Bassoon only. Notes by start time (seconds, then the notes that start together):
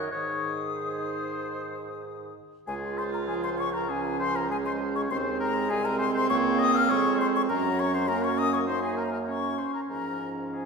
0.12 G#2
2.68 C#2
5.11 D#2
5.70 C2
6.30 C#2
6.90 F2
7.50 F#2
9.90 G#2